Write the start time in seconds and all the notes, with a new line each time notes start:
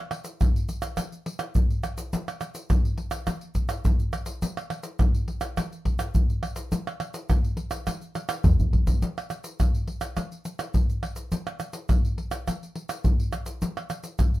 0.11 pandeiro, tamborim
0.24 pandeiro, shaker
0.41 pandeiro, tamborim, shaker, surdo
0.56 pandeiro, shaker
0.69 pandeiro, shaker
0.82 pandeiro, tamborim, shaker
0.97 pandeiro, tamborim, shaker, surdo
1.12 pandeiro, shaker
1.26 pandeiro
1.39 pandeiro, tamborim, shaker
1.55 pandeiro, shaker, surdo
1.70 pandeiro, shaker
1.83 pandeiro, tamborim, shaker
1.98 pandeiro, shaker
2.13 pandeiro, shaker, surdo
2.28 pandeiro, tamborim, shaker
2.41 pandeiro, tamborim, shaker
2.55 pandeiro, shaker
2.70 pandeiro, tamborim, shaker, surdo
2.85 pandeiro, shaker
2.98 pandeiro
3.11 pandeiro, tamborim, shaker
3.27 pandeiro, tamborim, shaker, surdo
3.41 pandeiro, shaker
3.55 pandeiro, shaker, surdo
3.69 pandeiro, tamborim, shaker
3.85 pandeiro, shaker, surdo
3.99 pandeiro, shaker
4.13 pandeiro, tamborim, shaker
4.26 pandeiro, shaker
4.42 pandeiro, shaker, surdo
4.57 pandeiro, tamborim, shaker
4.70 pandeiro, tamborim
4.83 pandeiro, shaker
4.99 pandeiro, tamborim, shaker, surdo
5.15 pandeiro, shaker
5.28 pandeiro
5.41 pandeiro, tamborim, shaker
5.57 pandeiro, tamborim, shaker, surdo
5.72 pandeiro, shaker
5.85 pandeiro, surdo
5.99 pandeiro, tamborim, shaker
6.15 pandeiro, shaker, surdo
6.30 pandeiro, shaker
6.43 pandeiro, tamborim
6.56 pandeiro, shaker
6.72 pandeiro, shaker, surdo
6.87 pandeiro, tamborim, shaker
7.00 pandeiro, tamborim
7.14 pandeiro, shaker
7.30 pandeiro, tamborim, shaker, surdo
7.44 pandeiro, shaker
7.57 pandeiro
7.71 pandeiro, tamborim, shaker
7.87 pandeiro, tamborim, shaker, surdo
8.01 pandeiro, shaker
8.15 pandeiro, tamborim, shaker
8.29 pandeiro, tamborim, shaker
8.44 surdo, pandeiro, shaker
8.60 pandeiro, shaker, surdo
8.73 pandeiro, surdo
8.87 pandeiro, shaker, surdo
9.02 pandeiro, shaker, surdo
9.18 pandeiro, tamborim, shaker
9.30 pandeiro, tamborim, shaker
9.44 pandeiro, shaker
9.60 pandeiro, tamborim, shaker, surdo
9.74 pandeiro, shaker
9.87 pandeiro
10.01 pandeiro, tamborim, shaker
10.17 pandeiro, tamborim, shaker, surdo
10.32 pandeiro, shaker
10.45 pandeiro, shaker
10.59 pandeiro, tamborim, shaker
10.74 pandeiro, shaker, surdo
10.90 pandeiro, shaker
11.03 pandeiro, tamborim
11.16 pandeiro, shaker
11.32 pandeiro, shaker, surdo
11.47 pandeiro, tamborim, shaker
11.60 pandeiro, tamborim, shaker
11.73 pandeiro, shaker
11.89 pandeiro, tamborim, shaker, surdo
12.05 pandeiro, shaker
12.18 pandeiro
12.31 pandeiro, tamborim, shaker
12.48 pandeiro, tamborim, shaker, surdo
12.63 pandeiro, shaker
12.75 pandeiro
12.89 pandeiro, tamborim, shaker
13.04 pandeiro, shaker, surdo
13.20 pandeiro, shaker
13.33 pandeiro, tamborim, shaker
13.46 pandeiro, shaker
13.62 pandeiro, shaker, surdo
13.77 pandeiro, tamborim, shaker
13.90 pandeiro, tamborim, shaker
14.04 pandeiro, shaker
14.19 pandeiro, tamborim, shaker, surdo
14.34 pandeiro, shaker